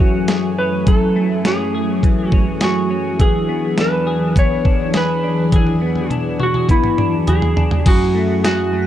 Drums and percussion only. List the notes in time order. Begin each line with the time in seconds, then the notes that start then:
0.28 snare, closed hi-hat
0.87 kick, closed hi-hat
1.45 snare, closed hi-hat
2.03 kick, closed hi-hat
2.32 kick
2.61 snare, closed hi-hat
3.20 kick, closed hi-hat
3.78 snare, closed hi-hat
4.36 kick, closed hi-hat
4.65 kick
4.94 snare, closed hi-hat
5.52 kick, closed hi-hat, high tom
5.67 high tom
5.96 high tom
6.10 closed hi-hat, mid tom
6.40 mid tom
6.54 mid tom
6.69 kick, closed hi-hat
6.84 mid tom
6.98 mid tom
7.27 closed hi-hat, floor tom
7.42 floor tom
7.57 floor tom
7.71 floor tom
7.86 kick, closed hi-hat, crash
8.44 snare, closed hi-hat, tambourine